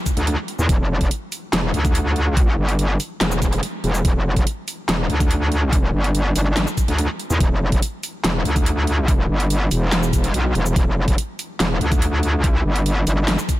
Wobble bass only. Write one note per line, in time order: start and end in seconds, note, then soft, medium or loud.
0.17 0.36 D2 loud
0.59 0.67 E2 medium
0.69 0.78 E1 loud
0.80 1.09 F1 loud
1.53 1.72 E1 loud
1.74 2.56 D2 medium
2.58 2.98 G1 medium
3.21 3.61 E1 loud
3.84 4.03 E1 loud
4.05 4.14 E1 loud
4.15 4.45 F1 loud
4.89 5.08 E1 loud
5.10 5.92 D2 loud
5.94 6.34 G1 loud
6.36 6.66 G1 loud
6.88 7.07 D2 loud
7.30 7.39 E2 loud
7.41 7.49 E1 loud
7.51 7.81 F1 loud
8.24 8.44 E1 loud
8.45 9.28 D2 medium
9.29 9.70 G1 loud
9.71 10.33 E1 loud
10.34 10.53 B1 loud
10.55 10.74 E1 loud
10.76 10.85 E1 loud
10.87 11.16 F1 loud
11.60 11.79 E1 loud
11.81 12.39 D2 loud
12.39 12.63 C#2 loud
12.65 13.05 G1 loud
13.07 13.37 G1 loud